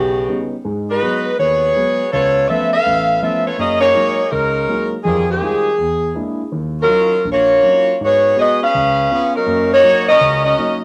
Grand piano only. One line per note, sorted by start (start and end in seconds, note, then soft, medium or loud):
0.00 0.22 B1 medium
0.28 0.53 G3 soft
0.28 0.53 B3 soft
0.28 0.53 C#4 soft
0.28 0.53 D#4 medium
0.65 0.96 G#2 medium
0.65 0.96 G#3 medium
1.02 1.27 F#3 soft
1.02 1.27 G#3 soft
1.02 1.27 B3 soft
1.39 1.70 D#2 medium
1.76 2.00 F#3 soft
1.76 2.01 G#3 soft
1.76 2.01 B3 soft
2.13 2.44 C#2 medium
2.50 2.74 F3 soft
2.50 2.74 A3 soft
2.50 2.74 B3 soft
2.50 2.75 C#4 soft
2.86 3.17 A1 medium
3.22 3.47 F3 soft
3.22 3.47 A3 soft
3.22 3.48 B3 soft
3.22 3.48 C#4 soft
3.58 3.90 F#2 medium
3.58 3.90 A#3 medium
3.95 4.20 F#3 soft
3.95 4.20 G#3 soft
3.95 4.20 A#3 soft
3.95 4.20 D#4 soft
4.32 4.64 C#2 medium
4.69 4.94 F#3 soft
4.69 4.94 G#3 soft
4.69 4.94 A#3 soft
4.69 4.95 D#4 soft
5.05 5.37 F2 medium
5.05 5.37 F3 medium
5.42 5.67 G3 soft
5.42 5.67 G#3 soft
5.42 5.67 D#4 soft
5.42 5.67 F4 soft
5.78 6.10 E2 medium
6.15 6.40 G#3 soft
6.15 6.41 A#3 soft
6.15 6.41 D4 soft
6.15 6.41 E4 medium
6.52 6.84 D#2 medium
6.88 7.14 F#3 soft
6.88 7.14 C#4 soft
6.88 7.14 D#4 soft
6.88 7.15 F4 soft
7.25 7.57 A#1 medium
7.63 7.88 F#3 soft
7.63 7.88 C#4 soft
7.63 7.88 D#4 soft
7.63 7.88 F4 medium
8.01 8.32 G#2 medium
8.36 8.61 G#3 soft
8.36 8.62 B3 soft
8.36 8.62 F#4 soft
8.75 9.05 C#2 medium
9.11 9.35 B3 soft
9.11 9.36 C#4 soft
9.11 9.36 F4 medium
9.46 9.79 F#2 medium
9.46 9.78 A#3 medium
9.83 10.08 F#3 soft
9.83 10.09 A#3 soft
9.83 10.09 D#4 medium
10.21 10.52 C#2 medium
10.21 10.52 C#3 medium
10.59 10.83 F#3 soft
10.59 10.83 A#3 soft
10.59 10.83 D#4 medium